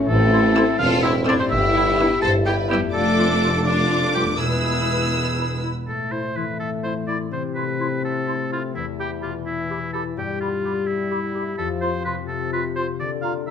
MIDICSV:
0, 0, Header, 1, 12, 480
1, 0, Start_track
1, 0, Key_signature, 0, "minor"
1, 0, Tempo, 475436
1, 90, Time_signature, 6, 3, 24, 8
1, 3930, Tempo, 488599
1, 7290, Tempo, 474308
1, 13556, End_track
2, 0, Start_track
2, 0, Title_t, "Violin section"
2, 0, Program_c, 0, 48
2, 570, Note_on_c, 0, 88, 81
2, 746, Note_off_c, 0, 88, 0
2, 1287, Note_on_c, 0, 88, 90
2, 1468, Note_off_c, 0, 88, 0
2, 2010, Note_on_c, 0, 88, 68
2, 2188, Note_off_c, 0, 88, 0
2, 2737, Note_on_c, 0, 88, 76
2, 2910, Note_off_c, 0, 88, 0
2, 2967, Note_on_c, 0, 86, 58
2, 3646, Note_off_c, 0, 86, 0
2, 3696, Note_on_c, 0, 86, 59
2, 4401, Note_off_c, 0, 86, 0
2, 4418, Note_on_c, 0, 88, 50
2, 5674, Note_off_c, 0, 88, 0
2, 13556, End_track
3, 0, Start_track
3, 0, Title_t, "Flute section"
3, 0, Program_c, 1, 73
3, 333, Note_on_c, 1, 84, 66
3, 394, Note_off_c, 1, 84, 0
3, 572, Note_on_c, 1, 84, 67
3, 633, Note_off_c, 1, 84, 0
3, 1051, Note_on_c, 1, 84, 65
3, 1112, Note_off_c, 1, 84, 0
3, 1292, Note_on_c, 1, 84, 65
3, 1353, Note_off_c, 1, 84, 0
3, 1785, Note_on_c, 1, 83, 65
3, 1846, Note_off_c, 1, 83, 0
3, 2022, Note_on_c, 1, 83, 64
3, 2083, Note_off_c, 1, 83, 0
3, 2493, Note_on_c, 1, 83, 65
3, 2553, Note_off_c, 1, 83, 0
3, 2726, Note_on_c, 1, 83, 62
3, 2786, Note_off_c, 1, 83, 0
3, 3217, Note_on_c, 1, 86, 54
3, 3277, Note_off_c, 1, 86, 0
3, 3450, Note_on_c, 1, 86, 55
3, 3511, Note_off_c, 1, 86, 0
3, 3949, Note_on_c, 1, 86, 47
3, 4008, Note_off_c, 1, 86, 0
3, 4191, Note_on_c, 1, 86, 47
3, 4250, Note_off_c, 1, 86, 0
3, 4672, Note_on_c, 1, 83, 41
3, 4731, Note_off_c, 1, 83, 0
3, 4924, Note_on_c, 1, 83, 41
3, 4983, Note_off_c, 1, 83, 0
3, 5408, Note_on_c, 1, 83, 37
3, 5467, Note_off_c, 1, 83, 0
3, 5658, Note_on_c, 1, 83, 39
3, 5717, Note_off_c, 1, 83, 0
3, 6137, Note_on_c, 1, 84, 42
3, 6196, Note_off_c, 1, 84, 0
3, 6369, Note_on_c, 1, 84, 39
3, 6428, Note_off_c, 1, 84, 0
3, 6843, Note_on_c, 1, 84, 45
3, 6902, Note_off_c, 1, 84, 0
3, 7078, Note_on_c, 1, 84, 42
3, 7137, Note_off_c, 1, 84, 0
3, 7545, Note_on_c, 1, 84, 40
3, 7606, Note_off_c, 1, 84, 0
3, 7788, Note_on_c, 1, 84, 45
3, 7849, Note_off_c, 1, 84, 0
3, 8262, Note_on_c, 1, 84, 47
3, 8323, Note_off_c, 1, 84, 0
3, 8511, Note_on_c, 1, 84, 46
3, 8572, Note_off_c, 1, 84, 0
3, 8991, Note_on_c, 1, 83, 48
3, 9052, Note_off_c, 1, 83, 0
3, 9219, Note_on_c, 1, 83, 46
3, 9280, Note_off_c, 1, 83, 0
3, 9710, Note_on_c, 1, 83, 51
3, 9770, Note_off_c, 1, 83, 0
3, 9951, Note_on_c, 1, 83, 45
3, 10012, Note_off_c, 1, 83, 0
3, 10432, Note_on_c, 1, 83, 47
3, 10493, Note_off_c, 1, 83, 0
3, 10673, Note_on_c, 1, 83, 48
3, 10734, Note_off_c, 1, 83, 0
3, 11140, Note_on_c, 1, 83, 48
3, 11201, Note_off_c, 1, 83, 0
3, 11389, Note_on_c, 1, 83, 49
3, 11450, Note_off_c, 1, 83, 0
3, 11862, Note_on_c, 1, 84, 44
3, 11923, Note_off_c, 1, 84, 0
3, 12096, Note_on_c, 1, 84, 47
3, 12157, Note_off_c, 1, 84, 0
3, 12563, Note_on_c, 1, 84, 50
3, 12624, Note_off_c, 1, 84, 0
3, 12816, Note_on_c, 1, 84, 51
3, 12876, Note_off_c, 1, 84, 0
3, 13283, Note_on_c, 1, 82, 46
3, 13343, Note_off_c, 1, 82, 0
3, 13523, Note_on_c, 1, 82, 49
3, 13556, Note_off_c, 1, 82, 0
3, 13556, End_track
4, 0, Start_track
4, 0, Title_t, "Oboe"
4, 0, Program_c, 2, 68
4, 83, Note_on_c, 2, 69, 105
4, 762, Note_off_c, 2, 69, 0
4, 793, Note_on_c, 2, 77, 112
4, 904, Note_off_c, 2, 77, 0
4, 1034, Note_on_c, 2, 76, 92
4, 1146, Note_off_c, 2, 76, 0
4, 1294, Note_on_c, 2, 74, 106
4, 1347, Note_off_c, 2, 74, 0
4, 1413, Note_on_c, 2, 72, 89
4, 1467, Note_off_c, 2, 72, 0
4, 1522, Note_on_c, 2, 76, 120
4, 2230, Note_off_c, 2, 76, 0
4, 2239, Note_on_c, 2, 81, 106
4, 2348, Note_off_c, 2, 81, 0
4, 2485, Note_on_c, 2, 79, 81
4, 2593, Note_off_c, 2, 79, 0
4, 2727, Note_on_c, 2, 67, 89
4, 2834, Note_off_c, 2, 67, 0
4, 2961, Note_on_c, 2, 69, 98
4, 3669, Note_off_c, 2, 69, 0
4, 3699, Note_on_c, 2, 74, 82
4, 4165, Note_off_c, 2, 74, 0
4, 4176, Note_on_c, 2, 67, 66
4, 4283, Note_off_c, 2, 67, 0
4, 4425, Note_on_c, 2, 68, 61
4, 5612, Note_off_c, 2, 68, 0
4, 5880, Note_on_c, 2, 69, 62
4, 6115, Note_on_c, 2, 72, 69
4, 6130, Note_off_c, 2, 69, 0
4, 6359, Note_on_c, 2, 71, 60
4, 6373, Note_off_c, 2, 72, 0
4, 6581, Note_off_c, 2, 71, 0
4, 6587, Note_on_c, 2, 69, 65
4, 6692, Note_off_c, 2, 69, 0
4, 6819, Note_on_c, 2, 72, 64
4, 6925, Note_off_c, 2, 72, 0
4, 7057, Note_on_c, 2, 74, 69
4, 7162, Note_off_c, 2, 74, 0
4, 7304, Note_on_c, 2, 72, 54
4, 7408, Note_off_c, 2, 72, 0
4, 7531, Note_on_c, 2, 71, 64
4, 8004, Note_off_c, 2, 71, 0
4, 8034, Note_on_c, 2, 69, 72
4, 8498, Note_off_c, 2, 69, 0
4, 8519, Note_on_c, 2, 65, 62
4, 8622, Note_off_c, 2, 65, 0
4, 8752, Note_on_c, 2, 64, 61
4, 8856, Note_off_c, 2, 64, 0
4, 8997, Note_on_c, 2, 67, 61
4, 9101, Note_off_c, 2, 67, 0
4, 9227, Note_on_c, 2, 65, 57
4, 9334, Note_off_c, 2, 65, 0
4, 9464, Note_on_c, 2, 64, 72
4, 9932, Note_off_c, 2, 64, 0
4, 9938, Note_on_c, 2, 69, 65
4, 10046, Note_off_c, 2, 69, 0
4, 10192, Note_on_c, 2, 67, 62
4, 10413, Note_off_c, 2, 67, 0
4, 10419, Note_on_c, 2, 65, 62
4, 10892, Note_on_c, 2, 64, 71
4, 10907, Note_off_c, 2, 65, 0
4, 11602, Note_off_c, 2, 64, 0
4, 11608, Note_on_c, 2, 69, 78
4, 11717, Note_off_c, 2, 69, 0
4, 11842, Note_on_c, 2, 72, 71
4, 12076, Note_off_c, 2, 72, 0
4, 12082, Note_on_c, 2, 71, 67
4, 12191, Note_off_c, 2, 71, 0
4, 12312, Note_on_c, 2, 69, 68
4, 12554, Note_off_c, 2, 69, 0
4, 12568, Note_on_c, 2, 71, 75
4, 12676, Note_off_c, 2, 71, 0
4, 12801, Note_on_c, 2, 72, 72
4, 12911, Note_off_c, 2, 72, 0
4, 13041, Note_on_c, 2, 74, 71
4, 13151, Note_off_c, 2, 74, 0
4, 13269, Note_on_c, 2, 77, 72
4, 13381, Note_off_c, 2, 77, 0
4, 13523, Note_on_c, 2, 76, 70
4, 13556, Note_off_c, 2, 76, 0
4, 13556, End_track
5, 0, Start_track
5, 0, Title_t, "Viola section"
5, 0, Program_c, 3, 48
5, 565, Note_on_c, 3, 60, 82
5, 565, Note_on_c, 3, 69, 79
5, 743, Note_off_c, 3, 69, 0
5, 744, Note_off_c, 3, 60, 0
5, 1285, Note_on_c, 3, 69, 69
5, 1289, Note_on_c, 3, 60, 79
5, 1467, Note_off_c, 3, 69, 0
5, 1469, Note_off_c, 3, 60, 0
5, 2010, Note_on_c, 3, 59, 70
5, 2010, Note_on_c, 3, 71, 75
5, 2188, Note_off_c, 3, 59, 0
5, 2188, Note_off_c, 3, 71, 0
5, 2731, Note_on_c, 3, 71, 70
5, 2734, Note_on_c, 3, 59, 68
5, 2906, Note_off_c, 3, 71, 0
5, 2908, Note_off_c, 3, 59, 0
5, 2973, Note_on_c, 3, 62, 62
5, 2974, Note_on_c, 3, 69, 63
5, 3649, Note_off_c, 3, 62, 0
5, 3650, Note_off_c, 3, 69, 0
5, 3688, Note_on_c, 3, 69, 60
5, 3691, Note_on_c, 3, 62, 55
5, 4397, Note_off_c, 3, 69, 0
5, 4399, Note_off_c, 3, 62, 0
5, 4422, Note_on_c, 3, 71, 55
5, 4425, Note_on_c, 3, 59, 51
5, 5676, Note_off_c, 3, 71, 0
5, 5677, Note_off_c, 3, 59, 0
5, 13556, End_track
6, 0, Start_track
6, 0, Title_t, "Violin section"
6, 0, Program_c, 4, 48
6, 89, Note_on_c, 4, 60, 94
6, 765, Note_off_c, 4, 60, 0
6, 813, Note_on_c, 4, 69, 109
6, 1045, Note_off_c, 4, 69, 0
6, 1046, Note_on_c, 4, 67, 78
6, 1126, Note_off_c, 4, 67, 0
6, 1276, Note_on_c, 4, 65, 81
6, 1327, Note_off_c, 4, 65, 0
6, 1409, Note_on_c, 4, 64, 75
6, 1457, Note_off_c, 4, 64, 0
6, 1520, Note_on_c, 4, 67, 91
6, 2229, Note_off_c, 4, 67, 0
6, 2250, Note_on_c, 4, 72, 100
6, 2331, Note_off_c, 4, 72, 0
6, 2498, Note_on_c, 4, 71, 73
6, 2727, Note_off_c, 4, 71, 0
6, 2736, Note_on_c, 4, 59, 71
6, 2816, Note_off_c, 4, 59, 0
6, 2974, Note_on_c, 4, 62, 82
6, 3676, Note_off_c, 4, 62, 0
6, 3707, Note_on_c, 4, 65, 78
6, 4169, Note_off_c, 4, 65, 0
6, 4185, Note_on_c, 4, 59, 60
6, 4413, Note_off_c, 4, 59, 0
6, 4425, Note_on_c, 4, 59, 43
6, 5612, Note_off_c, 4, 59, 0
6, 13556, End_track
7, 0, Start_track
7, 0, Title_t, "Clarinet"
7, 0, Program_c, 5, 71
7, 327, Note_on_c, 5, 64, 60
7, 413, Note_off_c, 5, 64, 0
7, 568, Note_on_c, 5, 64, 71
7, 654, Note_off_c, 5, 64, 0
7, 1047, Note_on_c, 5, 64, 65
7, 1134, Note_off_c, 5, 64, 0
7, 1303, Note_on_c, 5, 64, 69
7, 1387, Note_off_c, 5, 64, 0
7, 1775, Note_on_c, 5, 64, 59
7, 1860, Note_off_c, 5, 64, 0
7, 2020, Note_on_c, 5, 64, 61
7, 2104, Note_off_c, 5, 64, 0
7, 2498, Note_on_c, 5, 64, 63
7, 2582, Note_off_c, 5, 64, 0
7, 2723, Note_on_c, 5, 64, 60
7, 2810, Note_off_c, 5, 64, 0
7, 3213, Note_on_c, 5, 65, 50
7, 3297, Note_off_c, 5, 65, 0
7, 3463, Note_on_c, 5, 65, 54
7, 3546, Note_off_c, 5, 65, 0
7, 3948, Note_on_c, 5, 65, 43
7, 4030, Note_off_c, 5, 65, 0
7, 4190, Note_on_c, 5, 65, 45
7, 4272, Note_off_c, 5, 65, 0
7, 4674, Note_on_c, 5, 64, 37
7, 4757, Note_off_c, 5, 64, 0
7, 4912, Note_on_c, 5, 64, 38
7, 4997, Note_off_c, 5, 64, 0
7, 5388, Note_on_c, 5, 64, 35
7, 5475, Note_off_c, 5, 64, 0
7, 5631, Note_on_c, 5, 64, 42
7, 5718, Note_off_c, 5, 64, 0
7, 6118, Note_on_c, 5, 64, 42
7, 6201, Note_off_c, 5, 64, 0
7, 6358, Note_on_c, 5, 64, 44
7, 6441, Note_off_c, 5, 64, 0
7, 6835, Note_on_c, 5, 64, 41
7, 6916, Note_off_c, 5, 64, 0
7, 7062, Note_on_c, 5, 64, 45
7, 7144, Note_off_c, 5, 64, 0
7, 7539, Note_on_c, 5, 64, 37
7, 7624, Note_off_c, 5, 64, 0
7, 7784, Note_on_c, 5, 64, 43
7, 7868, Note_off_c, 5, 64, 0
7, 8261, Note_on_c, 5, 64, 41
7, 8347, Note_off_c, 5, 64, 0
7, 8508, Note_on_c, 5, 64, 43
7, 8592, Note_off_c, 5, 64, 0
7, 8990, Note_on_c, 5, 67, 41
7, 9073, Note_off_c, 5, 67, 0
7, 9220, Note_on_c, 5, 67, 47
7, 9306, Note_off_c, 5, 67, 0
7, 9711, Note_on_c, 5, 67, 46
7, 9794, Note_off_c, 5, 67, 0
7, 9952, Note_on_c, 5, 67, 47
7, 10035, Note_off_c, 5, 67, 0
7, 10425, Note_on_c, 5, 67, 41
7, 10510, Note_off_c, 5, 67, 0
7, 10661, Note_on_c, 5, 67, 51
7, 10747, Note_off_c, 5, 67, 0
7, 11128, Note_on_c, 5, 67, 48
7, 11217, Note_off_c, 5, 67, 0
7, 11374, Note_on_c, 5, 67, 46
7, 11461, Note_off_c, 5, 67, 0
7, 11857, Note_on_c, 5, 65, 46
7, 11942, Note_off_c, 5, 65, 0
7, 12088, Note_on_c, 5, 65, 49
7, 12174, Note_off_c, 5, 65, 0
7, 12569, Note_on_c, 5, 65, 49
7, 12655, Note_off_c, 5, 65, 0
7, 12809, Note_on_c, 5, 65, 48
7, 12895, Note_off_c, 5, 65, 0
7, 13288, Note_on_c, 5, 65, 48
7, 13375, Note_off_c, 5, 65, 0
7, 13556, End_track
8, 0, Start_track
8, 0, Title_t, "Cello section"
8, 0, Program_c, 6, 48
8, 87, Note_on_c, 6, 57, 82
8, 764, Note_off_c, 6, 57, 0
8, 801, Note_on_c, 6, 65, 88
8, 1044, Note_off_c, 6, 65, 0
8, 1044, Note_on_c, 6, 64, 83
8, 1280, Note_on_c, 6, 62, 75
8, 1288, Note_off_c, 6, 64, 0
8, 1399, Note_on_c, 6, 60, 77
8, 1403, Note_off_c, 6, 62, 0
8, 1524, Note_on_c, 6, 64, 85
8, 1525, Note_off_c, 6, 60, 0
8, 2240, Note_on_c, 6, 69, 86
8, 2245, Note_off_c, 6, 64, 0
8, 2321, Note_off_c, 6, 69, 0
8, 2486, Note_on_c, 6, 67, 78
8, 2567, Note_off_c, 6, 67, 0
8, 2724, Note_on_c, 6, 55, 68
8, 2805, Note_off_c, 6, 55, 0
8, 2964, Note_on_c, 6, 57, 77
8, 3671, Note_off_c, 6, 57, 0
8, 3692, Note_on_c, 6, 62, 60
8, 4162, Note_off_c, 6, 62, 0
8, 4173, Note_on_c, 6, 55, 50
8, 4251, Note_off_c, 6, 55, 0
8, 4413, Note_on_c, 6, 56, 42
8, 5606, Note_off_c, 6, 56, 0
8, 13556, End_track
9, 0, Start_track
9, 0, Title_t, "French horn section"
9, 0, Program_c, 7, 60
9, 91, Note_on_c, 7, 64, 87
9, 806, Note_off_c, 7, 64, 0
9, 811, Note_on_c, 7, 60, 78
9, 1533, Note_off_c, 7, 60, 0
9, 1546, Note_on_c, 7, 59, 70
9, 1650, Note_off_c, 7, 59, 0
9, 1783, Note_on_c, 7, 64, 72
9, 2012, Note_off_c, 7, 64, 0
9, 2015, Note_on_c, 7, 62, 66
9, 2121, Note_off_c, 7, 62, 0
9, 2245, Note_on_c, 7, 64, 76
9, 2949, Note_off_c, 7, 64, 0
9, 2978, Note_on_c, 7, 65, 62
9, 3082, Note_off_c, 7, 65, 0
9, 3223, Note_on_c, 7, 60, 59
9, 3327, Note_off_c, 7, 60, 0
9, 3451, Note_on_c, 7, 62, 56
9, 4395, Note_off_c, 7, 62, 0
9, 4429, Note_on_c, 7, 64, 55
9, 5494, Note_off_c, 7, 64, 0
9, 5887, Note_on_c, 7, 57, 50
9, 7257, Note_off_c, 7, 57, 0
9, 7297, Note_on_c, 7, 60, 56
9, 8712, Note_off_c, 7, 60, 0
9, 8747, Note_on_c, 7, 52, 58
9, 10183, Note_off_c, 7, 52, 0
9, 10187, Note_on_c, 7, 55, 60
9, 11617, Note_on_c, 7, 53, 64
9, 11621, Note_off_c, 7, 55, 0
9, 12210, Note_off_c, 7, 53, 0
9, 12319, Note_on_c, 7, 48, 56
9, 12922, Note_off_c, 7, 48, 0
9, 13055, Note_on_c, 7, 50, 58
9, 13556, Note_off_c, 7, 50, 0
9, 13556, End_track
10, 0, Start_track
10, 0, Title_t, "Harp"
10, 0, Program_c, 8, 46
10, 0, Note_on_c, 8, 45, 75
10, 0, Note_on_c, 8, 60, 59
10, 0, Note_on_c, 8, 64, 57
10, 33, Note_on_c, 8, 69, 62
10, 1342, Note_on_c, 8, 43, 68
10, 1388, Note_on_c, 8, 59, 64
10, 1418, Note_off_c, 8, 64, 0
10, 1430, Note_on_c, 8, 64, 59
10, 1455, Note_off_c, 8, 45, 0
10, 1477, Note_on_c, 8, 71, 57
10, 1478, Note_off_c, 8, 60, 0
10, 1522, Note_off_c, 8, 69, 0
10, 2783, Note_on_c, 8, 41, 62
10, 2829, Note_on_c, 8, 57, 51
10, 2873, Note_on_c, 8, 62, 47
10, 2890, Note_off_c, 8, 43, 0
10, 2912, Note_off_c, 8, 59, 0
10, 2918, Note_on_c, 8, 74, 52
10, 2933, Note_off_c, 8, 64, 0
10, 2957, Note_off_c, 8, 71, 0
10, 4238, Note_on_c, 8, 40, 45
10, 4284, Note_on_c, 8, 59, 36
10, 4325, Note_on_c, 8, 64, 37
10, 4341, Note_off_c, 8, 41, 0
10, 4364, Note_off_c, 8, 57, 0
10, 4369, Note_on_c, 8, 71, 37
10, 4385, Note_off_c, 8, 62, 0
10, 4407, Note_off_c, 8, 74, 0
10, 5804, Note_off_c, 8, 40, 0
10, 5827, Note_off_c, 8, 59, 0
10, 5869, Note_off_c, 8, 71, 0
10, 5873, Note_on_c, 8, 45, 50
10, 6106, Note_on_c, 8, 60, 39
10, 6346, Note_on_c, 8, 52, 41
10, 6568, Note_off_c, 8, 64, 0
10, 6580, Note_on_c, 8, 64, 39
10, 6804, Note_off_c, 8, 60, 0
10, 6816, Note_on_c, 8, 60, 39
10, 7042, Note_off_c, 8, 64, 0
10, 7053, Note_on_c, 8, 64, 43
10, 7290, Note_on_c, 8, 48, 53
10, 7307, Note_off_c, 8, 52, 0
10, 7308, Note_off_c, 8, 45, 0
10, 7534, Note_on_c, 8, 57, 40
10, 7764, Note_off_c, 8, 60, 0
10, 7776, Note_on_c, 8, 60, 35
10, 8002, Note_off_c, 8, 64, 0
10, 8014, Note_on_c, 8, 64, 42
10, 8245, Note_off_c, 8, 57, 0
10, 8257, Note_on_c, 8, 57, 41
10, 8491, Note_off_c, 8, 64, 0
10, 8503, Note_on_c, 8, 64, 43
10, 8746, Note_on_c, 8, 40, 56
10, 8756, Note_off_c, 8, 48, 0
10, 8756, Note_off_c, 8, 57, 0
10, 8758, Note_off_c, 8, 60, 0
10, 8983, Note_on_c, 8, 59, 44
10, 9222, Note_on_c, 8, 47, 41
10, 9447, Note_off_c, 8, 64, 0
10, 9460, Note_on_c, 8, 64, 42
10, 9690, Note_off_c, 8, 59, 0
10, 9702, Note_on_c, 8, 59, 43
10, 9935, Note_off_c, 8, 64, 0
10, 9947, Note_on_c, 8, 64, 45
10, 10181, Note_on_c, 8, 43, 51
10, 10199, Note_off_c, 8, 47, 0
10, 10202, Note_off_c, 8, 40, 0
10, 10410, Note_off_c, 8, 59, 0
10, 10422, Note_on_c, 8, 59, 41
10, 10666, Note_on_c, 8, 55, 42
10, 10892, Note_off_c, 8, 64, 0
10, 10904, Note_on_c, 8, 64, 48
10, 11127, Note_off_c, 8, 59, 0
10, 11139, Note_on_c, 8, 59, 43
10, 11371, Note_off_c, 8, 64, 0
10, 11384, Note_on_c, 8, 64, 41
10, 11617, Note_on_c, 8, 41, 56
10, 11636, Note_off_c, 8, 59, 0
10, 11637, Note_off_c, 8, 43, 0
10, 11638, Note_off_c, 8, 64, 0
10, 11639, Note_off_c, 8, 55, 0
10, 11858, Note_on_c, 8, 60, 44
10, 12093, Note_on_c, 8, 48, 46
10, 12327, Note_on_c, 8, 65, 43
10, 12556, Note_off_c, 8, 60, 0
10, 12568, Note_on_c, 8, 60, 43
10, 12790, Note_off_c, 8, 65, 0
10, 12802, Note_on_c, 8, 65, 44
10, 13043, Note_on_c, 8, 50, 54
10, 13067, Note_off_c, 8, 41, 0
10, 13067, Note_off_c, 8, 48, 0
10, 13067, Note_off_c, 8, 60, 0
10, 13282, Note_on_c, 8, 58, 38
10, 13556, Note_off_c, 8, 50, 0
10, 13556, Note_off_c, 8, 58, 0
10, 13556, Note_off_c, 8, 65, 0
10, 13556, End_track
11, 0, Start_track
11, 0, Title_t, "Double bass section"
11, 0, Program_c, 10, 48
11, 97, Note_on_c, 10, 33, 94
11, 661, Note_off_c, 10, 33, 0
11, 811, Note_on_c, 10, 28, 84
11, 1384, Note_off_c, 10, 28, 0
11, 1538, Note_on_c, 10, 31, 94
11, 2105, Note_off_c, 10, 31, 0
11, 2253, Note_on_c, 10, 31, 71
11, 2819, Note_off_c, 10, 31, 0
11, 2966, Note_on_c, 10, 29, 73
11, 4372, Note_off_c, 10, 29, 0
11, 4416, Note_on_c, 10, 28, 49
11, 5648, Note_off_c, 10, 28, 0
11, 13556, End_track
12, 0, Start_track
12, 0, Title_t, "Tuba"
12, 0, Program_c, 11, 58
12, 89, Note_on_c, 11, 33, 92
12, 657, Note_off_c, 11, 33, 0
12, 809, Note_on_c, 11, 28, 100
12, 1384, Note_off_c, 11, 28, 0
12, 1526, Note_on_c, 11, 31, 87
12, 2099, Note_off_c, 11, 31, 0
12, 2246, Note_on_c, 11, 31, 79
12, 2816, Note_off_c, 11, 31, 0
12, 2974, Note_on_c, 11, 29, 68
12, 4375, Note_off_c, 11, 29, 0
12, 4419, Note_on_c, 11, 28, 47
12, 5649, Note_off_c, 11, 28, 0
12, 13556, End_track
0, 0, End_of_file